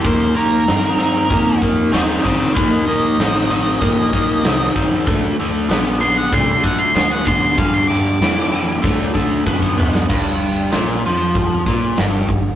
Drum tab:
CC |----------------|----------------|----------------|----------------|
HH |o-o-o-o-o-o-o-o-|o-o-o-o-o-o-o-o-|o-o-o-o-o-o-o-o-|o-o-o-o---------|
SD |----o-------o---|----o-------o---|----o-------o---|----o---o------o|
FT |----------------|----------------|----------------|--------------o-|
BD |o-------o-o---o-|o-------o-o---o-|o-------o-o---o-|o-------o-o-oo--|

CC |x---------------|
HH |--o-o-o-o-o-o-o-|
SD |----o-------o---|
FT |----------------|
BD |o-------o-o---o-|